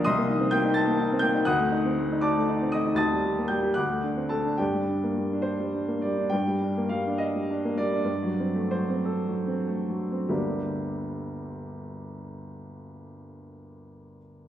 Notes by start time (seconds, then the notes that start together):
0.04 C2 D#5 C6 D#6
0.18 A#3
0.30 D#4
0.40 C4
0.51 A#3 G5 G6
0.65 D#4
0.74 A5 A6
0.87 A#3
1.00 D#4
1.12 C4
1.19 A#3 G5 G6
1.35 D#4
1.45 D2 F#5 D#6 F#6
1.60 A3
1.72 D#4
1.85 C4
1.98 A3
2.12 D#4
2.21 D5 A5 D6
2.37 A3
2.50 D#4
2.62 C4
2.72 A3 D#5 D#6
2.87 D#4
2.95 D#2 A5 D#6 A6
3.13 G3
3.25 G4
3.38 A#3
3.48 G3 G5 G6
3.63 G4
3.74 D2 F#5 D6 F#6
3.90 A3
4.03 D4
4.16 C4
4.29 A3 A4 A5
4.45 D4
4.58 G2 G4 D5 G5
4.74 G3
4.89 D4
5.03 A#3
5.17 G3
5.33 D4
5.42 C5
5.60 G3
5.74 D4
5.88 A#3
6.02 G3 D5
6.18 D4
6.30 G2 G5
6.47 G3
6.62 D4
6.77 A#3
6.89 G3 F5
7.07 D4
7.18 D#5
7.36 G3
7.51 D4
7.65 A#3
7.78 G3 D5
7.93 D4
8.04 G2
8.23 F#3
8.40 C4
8.55 A3
8.71 F#3 C5
8.89 C4
9.05 A4
9.28 F#3
9.47 C4
9.67 A3
9.89 F#3
10.12 C4
10.29 G1 D2 G3 A#3 D4 G4